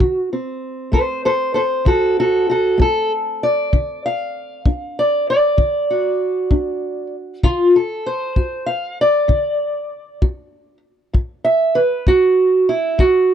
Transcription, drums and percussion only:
0.00 kick
0.93 kick
1.86 kick
2.80 kick
3.73 kick
4.66 kick
5.58 kick
6.51 kick
7.43 kick
8.36 kick
9.29 kick
10.22 kick
11.14 kick
12.07 kick
12.99 kick

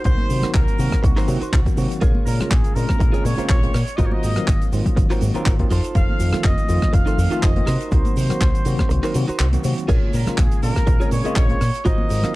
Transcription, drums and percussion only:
0.04 kick, closed hi-hat, cabasa, shaker
0.18 high conga
0.29 open hi-hat, cabasa, shaker
0.42 cross-stick, closed hi-hat, low conga, cabasa, shaker
0.54 kick, clap, closed hi-hat, high conga, cabasa, shaker
0.68 closed hi-hat, shaker
0.78 open hi-hat, cabasa, shaker
0.91 kick, cross-stick, closed hi-hat, high conga, low conga, cabasa, shaker
1.04 kick, closed hi-hat, cabasa, shaker
1.17 clap, open hi-hat, shaker
1.28 open hi-hat, high conga, cabasa, shaker
1.41 closed hi-hat, cabasa, shaker
1.53 kick, clap, closed hi-hat, shaker
1.65 kick, closed hi-hat, high conga, shaker
1.77 open hi-hat, cabasa, shaker
1.91 closed hi-hat, cabasa, shaker
2.01 kick, closed hi-hat, cabasa, shaker
2.15 high conga
2.26 open hi-hat, cabasa, shaker
2.40 cross-stick, closed hi-hat, low conga, cabasa, shaker
2.51 kick, clap, closed hi-hat, high conga, cabasa, shaker
2.64 closed hi-hat, shaker
2.76 open hi-hat, cabasa, shaker
2.89 kick, cross-stick, closed hi-hat, high conga, low conga, cabasa, shaker
3.00 kick, closed hi-hat, cabasa, shaker
3.14 closed hi-hat, shaker
3.25 open hi-hat, high conga, cabasa, shaker
3.38 closed hi-hat, cabasa, shaker
3.49 kick, clap, closed hi-hat, shaker
3.63 closed hi-hat, high conga
3.74 cross-stick, open hi-hat, cabasa, shaker
3.87 closed hi-hat, cabasa, shaker
3.99 kick, closed hi-hat, cabasa, shaker
4.12 high conga
4.23 open hi-hat, cabasa, shaker
4.36 cross-stick, closed hi-hat, low conga, cabasa, shaker
4.48 kick, clap, closed hi-hat, high conga, cabasa, shaker
4.62 closed hi-hat, shaker
4.72 open hi-hat, cabasa, shaker
4.86 kick, closed hi-hat, high conga, low conga, cabasa, shaker
4.97 kick, closed hi-hat, cabasa, shaker
5.10 clap, open hi-hat, shaker
5.21 open hi-hat, high conga, cabasa, shaker
5.35 closed hi-hat, cabasa, shaker
5.46 kick, clap, closed hi-hat, shaker
5.59 kick, closed hi-hat, high conga
5.70 open hi-hat, cabasa, shaker
5.84 closed hi-hat, cabasa, shaker
5.95 kick, closed hi-hat, cabasa, shaker
6.09 high conga
6.20 open hi-hat, cabasa, shaker
6.33 cross-stick, closed hi-hat, low conga, cabasa, shaker
6.44 kick, clap, closed hi-hat, high conga, cabasa, shaker
6.58 closed hi-hat, shaker
6.69 open hi-hat, cabasa, shaker
6.82 kick, cross-stick, closed hi-hat, high conga, low conga, cabasa, shaker
6.93 kick, closed hi-hat, cabasa, shaker
7.07 closed hi-hat, shaker
7.18 open hi-hat, high conga, cabasa, shaker
7.31 closed hi-hat, cabasa, shaker
7.43 kick, clap, closed hi-hat, shaker
7.56 closed hi-hat, high conga
7.67 cross-stick, open hi-hat, cabasa, shaker
7.81 closed hi-hat, cabasa, shaker
7.92 kick, closed hi-hat, cabasa, shaker
8.05 closed hi-hat, high conga, shaker
8.16 open hi-hat, cabasa, shaker
8.29 cross-stick, closed hi-hat, low conga, cabasa, shaker
8.41 kick, clap, closed hi-hat, high conga, cabasa, shaker
8.55 closed hi-hat, shaker
8.65 open hi-hat, cabasa, shaker
8.79 kick, cross-stick, closed hi-hat, high conga, low conga, cabasa, shaker
8.90 closed hi-hat, cabasa, shaker
9.04 clap, open hi-hat, shaker
9.14 open hi-hat, high conga, cabasa, shaker
9.27 closed hi-hat, cabasa, shaker
9.39 clap, closed hi-hat, cabasa, shaker
9.53 closed hi-hat, high conga, shaker
9.64 open hi-hat, cabasa, shaker
9.78 closed hi-hat, cabasa, shaker
9.89 kick, closed hi-hat, crash, cabasa, shaker
10.02 high conga
10.13 open hi-hat, cabasa, shaker
10.26 cross-stick, closed hi-hat, low conga, cabasa, shaker
10.38 kick, clap, closed hi-hat, high conga, cabasa, shaker
10.51 closed hi-hat, shaker
10.62 open hi-hat, cabasa, shaker
10.75 kick, cross-stick, closed hi-hat, high conga, low conga, cabasa, shaker
10.86 kick, closed hi-hat, cabasa, shaker
11.01 closed hi-hat, shaker
11.11 open hi-hat, high conga, cabasa, shaker
11.25 closed hi-hat, cabasa, shaker
11.36 kick, clap, closed hi-hat, shaker
11.49 closed hi-hat, high conga
11.61 cross-stick, open hi-hat, cabasa, shaker
11.74 closed hi-hat, cabasa, shaker
11.85 kick, closed hi-hat, cabasa, shaker
11.98 high conga
12.09 open hi-hat, cabasa, shaker
12.23 cross-stick, closed hi-hat, low conga, cabasa, shaker

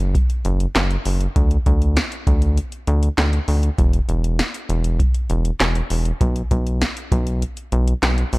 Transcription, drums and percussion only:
0.15 kick, closed hi-hat
0.30 closed hi-hat
0.45 closed hi-hat
0.60 closed hi-hat
0.75 snare, clap, closed hi-hat
0.91 closed hi-hat
1.05 open hi-hat
1.21 closed hi-hat
1.36 kick, closed hi-hat
1.51 closed hi-hat
1.66 kick, closed hi-hat
1.82 closed hi-hat
1.97 snare, closed hi-hat
2.12 closed hi-hat
2.27 kick, closed hi-hat
2.42 closed hi-hat
2.57 closed hi-hat
2.72 closed hi-hat
2.87 closed hi-hat
3.03 closed hi-hat
3.18 snare, clap, closed hi-hat
3.33 closed hi-hat
3.48 open hi-hat
3.63 closed hi-hat
3.78 kick, closed hi-hat
3.93 closed hi-hat
4.09 closed hi-hat
4.24 closed hi-hat
4.39 snare, closed hi-hat
4.54 closed hi-hat
4.70 closed hi-hat
4.84 closed hi-hat
5.00 kick, closed hi-hat
5.15 closed hi-hat
5.30 closed hi-hat
5.45 closed hi-hat
5.60 snare, clap, closed hi-hat
5.75 closed hi-hat
5.90 open hi-hat
6.05 closed hi-hat
6.21 kick, closed hi-hat
6.36 closed hi-hat
6.51 kick, closed hi-hat
6.67 closed hi-hat
6.81 snare, closed hi-hat
6.97 closed hi-hat
7.12 kick, closed hi-hat
7.27 closed hi-hat
7.42 closed hi-hat
7.57 closed hi-hat
7.72 closed hi-hat
7.88 closed hi-hat
8.03 snare, clap, closed hi-hat
8.18 closed hi-hat
8.33 open hi-hat

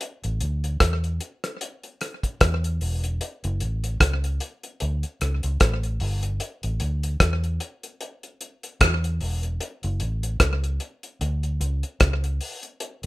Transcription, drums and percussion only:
0.01 closed hi-hat
0.24 closed hi-hat
0.41 closed hi-hat
0.64 closed hi-hat
0.80 kick, cross-stick, closed hi-hat
1.04 closed hi-hat
1.21 closed hi-hat
1.44 cross-stick, closed hi-hat
1.61 closed hi-hat
1.83 closed hi-hat
2.01 cross-stick, closed hi-hat
2.23 kick, closed hi-hat
2.41 kick, cross-stick, closed hi-hat
2.64 closed hi-hat
2.81 open hi-hat
3.04 closed hi-hat
3.21 closed hi-hat
3.44 closed hi-hat
3.60 closed hi-hat
3.84 closed hi-hat
4.00 kick, cross-stick, closed hi-hat
4.24 closed hi-hat
4.40 closed hi-hat
4.63 closed hi-hat
4.80 closed hi-hat
5.03 closed hi-hat
5.21 cross-stick, closed hi-hat
5.43 closed hi-hat
5.60 kick, cross-stick, closed hi-hat
5.83 closed hi-hat
6.00 open hi-hat
6.23 closed hi-hat
6.40 closed hi-hat
6.63 closed hi-hat
6.80 closed hi-hat
7.03 closed hi-hat
7.20 kick, cross-stick, closed hi-hat
7.44 closed hi-hat
7.60 closed hi-hat
7.83 closed hi-hat
8.01 closed hi-hat
8.23 closed hi-hat
8.41 closed hi-hat
8.63 closed hi-hat
8.81 kick, cross-stick, closed hi-hat
9.04 closed hi-hat
9.21 open hi-hat
9.43 closed hi-hat
9.60 closed hi-hat
9.83 closed hi-hat
10.00 closed hi-hat
10.23 closed hi-hat
10.40 kick, cross-stick, closed hi-hat
10.64 closed hi-hat
10.80 closed hi-hat
11.03 closed hi-hat
11.21 closed hi-hat
11.43 closed hi-hat
11.61 closed hi-hat
11.83 closed hi-hat
12.00 kick, cross-stick, closed hi-hat
12.24 closed hi-hat
12.41 open hi-hat
12.63 closed hi-hat
12.80 closed hi-hat

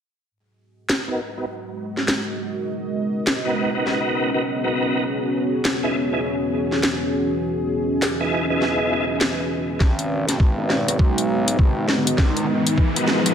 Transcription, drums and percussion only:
0.89 snare
1.97 snare
2.08 snare
3.27 snare
3.87 snare
5.65 snare
6.72 snare
6.83 snare
8.02 snare
8.62 snare
9.21 snare
9.80 kick, snare
9.99 closed hi-hat
10.29 snare, closed hi-hat
10.40 kick
10.70 cross-stick, snare
10.88 cross-stick, closed hi-hat
10.99 kick
11.18 closed hi-hat
11.48 closed hi-hat
11.59 kick
11.89 cross-stick, snare
12.07 closed hi-hat
12.18 kick, snare
12.37 closed hi-hat
12.67 closed hi-hat
12.78 kick
12.96 closed hi-hat
13.08 cross-stick, snare
13.26 cross-stick, closed hi-hat

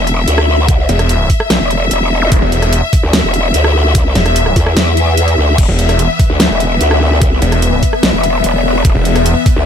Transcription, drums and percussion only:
0.07 closed hi-hat
0.28 closed hi-hat
0.38 cross-stick
0.68 kick, closed hi-hat
0.89 closed hi-hat
0.99 cross-stick, closed hi-hat
1.09 closed hi-hat
1.30 kick, open hi-hat
1.40 cross-stick
1.50 snare, closed hi-hat
1.71 closed hi-hat
1.91 closed hi-hat
2.32 kick, closed hi-hat
2.52 closed hi-hat
2.62 cross-stick, closed hi-hat
2.73 closed hi-hat
2.93 kick, open hi-hat
3.13 snare, closed hi-hat
3.34 closed hi-hat
3.54 closed hi-hat
3.64 cross-stick
3.95 kick, closed hi-hat
4.15 snare, closed hi-hat
4.26 cross-stick, closed hi-hat
4.36 closed hi-hat
4.46 cross-stick
4.56 kick, open hi-hat
4.67 cross-stick
4.77 snare, closed hi-hat
4.97 closed hi-hat
5.17 closed hi-hat
5.28 closed hi-hat
5.58 kick, closed hi-hat, crash
5.79 closed hi-hat
5.89 cross-stick, closed hi-hat
5.99 closed hi-hat
6.19 kick, open hi-hat
6.40 snare, closed hi-hat
6.60 closed hi-hat
6.81 closed hi-hat
6.91 cross-stick
7.22 kick, closed hi-hat
7.42 closed hi-hat
7.52 cross-stick, closed hi-hat
7.62 closed hi-hat
7.83 kick, open hi-hat
7.93 cross-stick
8.03 snare, closed hi-hat
8.24 closed hi-hat
8.44 closed hi-hat
8.85 kick, closed hi-hat
9.05 closed hi-hat
9.16 cross-stick, closed hi-hat
9.26 closed hi-hat
9.46 kick, open hi-hat

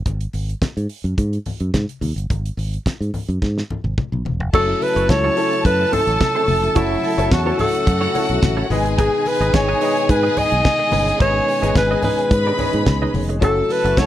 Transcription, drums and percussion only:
0.06 kick, closed hi-hat, muted conga
0.21 closed hi-hat
0.33 open hi-hat, muted conga
0.49 closed hi-hat
0.62 kick, snare, closed hi-hat, high conga
0.77 closed hi-hat
0.89 open hi-hat
1.05 closed hi-hat
1.18 kick, closed hi-hat, muted conga
1.33 closed hi-hat
1.46 open hi-hat, muted conga, low conga
1.60 closed hi-hat
1.74 kick, snare, closed hi-hat, high conga
1.89 closed hi-hat
2.02 open hi-hat, high conga
2.18 closed hi-hat
2.30 kick, closed hi-hat, muted conga
2.45 closed hi-hat
2.58 open hi-hat, muted conga
2.74 closed hi-hat
2.86 kick, snare, closed hi-hat, high conga
3.02 closed hi-hat
3.14 open hi-hat, low conga
3.30 closed hi-hat
3.42 kick, snare, muted conga
3.58 snare
3.70 muted conga, low conga
3.85 high tom
3.98 kick, mid tom, high conga
4.13 high conga
4.26 floor tom, high conga
4.40 floor tom
4.54 kick, crash, muted conga
4.82 open hi-hat, muted conga
4.97 closed hi-hat
5.09 kick, snare, closed hi-hat, high conga
5.37 open hi-hat
5.53 closed hi-hat
5.65 kick, closed hi-hat, muted conga
5.93 open hi-hat, muted conga, low conga
6.08 closed hi-hat
6.21 kick, snare, closed hi-hat, high conga
6.48 open hi-hat, high conga
6.64 closed hi-hat
6.76 kick, closed hi-hat, muted conga
7.03 open hi-hat, muted conga
7.19 closed hi-hat
7.31 kick, snare, closed hi-hat, high conga
7.59 open hi-hat, low conga
7.74 closed hi-hat
7.87 kick, closed hi-hat, muted conga
8.15 open hi-hat, muted conga
8.29 closed hi-hat
8.42 kick, snare, closed hi-hat, high conga
8.71 open hi-hat, high conga
8.86 closed hi-hat
8.98 kick, closed hi-hat, muted conga
9.26 open hi-hat, muted conga
9.42 closed hi-hat
9.54 kick, snare, closed hi-hat, high conga
9.81 open hi-hat
9.97 closed hi-hat
10.09 kick, closed hi-hat, muted conga
10.37 open hi-hat, muted conga, low conga
10.52 closed hi-hat
10.65 kick, snare, closed hi-hat, high conga
10.92 open hi-hat, high conga
11.08 closed hi-hat
11.20 kick, closed hi-hat, muted conga
11.48 open hi-hat
11.63 closed hi-hat
11.75 kick, snare, closed hi-hat, high conga
12.03 open hi-hat, low conga
12.19 closed hi-hat
12.31 kick, closed hi-hat, muted conga
12.59 open hi-hat, muted conga, low conga
12.73 closed hi-hat
12.86 kick, snare, closed hi-hat, high conga
13.15 open hi-hat, high conga
13.30 closed hi-hat
13.42 kick, closed hi-hat, muted conga
13.69 open hi-hat, muted conga
13.85 closed hi-hat
13.97 kick, snare, closed hi-hat, high conga

